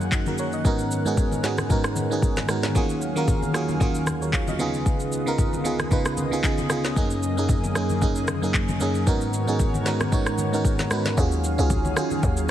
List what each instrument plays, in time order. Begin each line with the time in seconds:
Already playing: analog synth pad F#2 D#3 A#3 G#4 F#5, fm electric piano F#2 A#3 C#4 D#4 F#4 G#4
0.01 shaker
0.12 fm electric piano D#4 F#4, kick, clap, shaker
0.26 fm electric piano F#4 A#4, high conga, shaker
0.38 fm electric piano A#4 C#5, shaker
0.52 fm electric piano D#5, shaker
0.64 analog synth pad G#2 D#3 B3 C#4 A#4, fm electric piano G#2 B3 C#4 D#4 F#4 A#4, kick, shaker
0.79 shaker
0.91 shaker
1.05 fm electric piano G#2 B3 C#4 D#4 F#4 G#4, shaker
1.17 kick, low conga, shaker
1.31 high conga, shaker
1.43 fm electric piano G#2 B3 C#4 D#4 F#4 G#4, snare, shaker
1.58 cross-stick, high conga, shaker
1.70 fm electric piano G#2 B3 C#4 D#4 F#4 A#4, kick, low conga, shaker
1.84 cross-stick, shaker
1.96 high conga, shaker
2.10 fm electric piano G#2 B3 C#4 D#4 F#4 G#4, shaker
2.22 kick, low conga, shaker
2.37 snare, high conga, shaker
2.48 fm electric piano G#2 B3 C#4 D#4 F#4 A#4, cross-stick, shaker
2.63 snare, high conga, shaker
2.75 analog synth pad D#2 F#3 G#4 F5, fm electric piano D#3 A#3 C#4 F4 F#4 G#4, kick, shaker
2.89 shaker
3.02 shaker
3.16 fm electric piano D#3 A#3 C#4 F4 F#4 A#4, shaker
3.27 kick, low conga, shaker
3.42 high conga, shaker
3.54 fm electric piano D#3 A#3 C#4 F4 F#4 G#4, cross-stick, shaker
3.68 high conga, shaker
3.80 fm electric piano D#3 A#3 C#4 F4 F#4 G#4, kick, low conga, shaker
3.95 shaker
4.06 cross-stick, high conga, shaker
4.22 fm electric piano A#4 C#5, shaker
4.33 fm electric piano C#5 F5, kick, clap, shaker
4.47 fm electric piano D#5, high conga, shaker
4.59 analog synth pad C#2 C#3 B3 F4 D#5, fm electric piano C#3 B3 D#4 F4 G#4, shaker
4.74 shaker
4.86 kick, shaker
5.00 shaker
5.12 shaker
5.26 fm electric piano C#3 B3 D#4 F4 A#4, shaker
5.38 kick, low conga, shaker
5.53 high conga, shaker
5.64 fm electric piano C#3 B3 D#4 F4 G#4, shaker
5.79 cross-stick, high conga, shaker
5.91 fm electric piano C#3 B3 D#4 F4 B4, kick, low conga, shaker
6.05 cross-stick, shaker
6.17 high conga, shaker
6.31 fm electric piano C#3 B3 D#4 F4 G#4, shaker
6.43 fm electric piano C#3 B3 D#4 F4 G#4, kick, clap, shaker
6.58 high conga, shaker
6.69 fm electric piano C#3 B3 D#4 F4 G#4, cross-stick, shaker
6.84 snare, shaker
6.96 fm electric piano F#2 A#3 C#4 D#4 G#4, analog synth pad F#2 A#3 G#4, kick, shaker
7.10 shaker
7.23 shaker
7.37 fm electric piano F#2 A#3 C#4 D#4 G#4, shaker
7.49 kick, low conga, shaker
7.64 high conga, shaker
7.75 fm electric piano F#2 A#3 C#4 D#4 G#4, cross-stick, shaker
7.89 high conga, shaker
8.01 fm electric piano F#2 A#3 C#4 D#4 G#4, kick, low conga, shaker
8.16 shaker
8.28 cross-stick, high conga, shaker
8.42 fm electric piano F#2 A#3 C#4 D#4 G#4, shaker
8.54 kick, clap, shaker
8.68 high conga, shaker
8.80 fm electric piano F#2 A#3 C#4 D#4 G#4, shaker
8.95 shaker
9.06 fm electric piano G#2 B3 C#4 D#4 F#4 A#4, analog synth pad G#2 D#3 B3 F#4 A#4 C#5, kick, shaker
9.21 shaker
9.33 shaker
9.47 fm electric piano G#2 B3 C#4 D#4 F#4 G#4, shaker
9.59 kick, low conga, shaker
9.74 high conga, shaker
9.85 fm electric piano G#2 B3 C#4 D#4 F#4 A#4, snare, shaker
10.00 cross-stick, high conga, shaker
10.11 fm electric piano G#2 B3 C#4 D#4 F#4 C#5, kick, low conga, shaker
10.26 cross-stick, shaker
10.38 high conga, shaker
10.52 fm electric piano G#2 B3 C#4 D#4 F#4 A#4, shaker
10.65 kick, shaker
10.79 snare, high conga, shaker
10.91 fm electric piano G#2 B3 C#4 D#4 F#4 B4, cross-stick, shaker
11.05 snare, high conga, shaker
11.17 log drum bass D#2, analog synth pad D#3 F#3 C#4 G#4 F5, fm electric piano C#4 F4 F#4 G#4, kick, shaker
11.32 shaker
11.44 shaker
11.58 log drum bass C#2, fm electric piano C#4 F4 F#4 G#4, shaker
11.70 kick, low conga, shaker
11.85 high conga, shaker
11.96 fm electric piano C#4 F4 F#4 G#4, cross-stick, shaker
12.11 high conga, shaker
12.23 log drum bass D#2, kick, low conga, shaker
12.37 shaker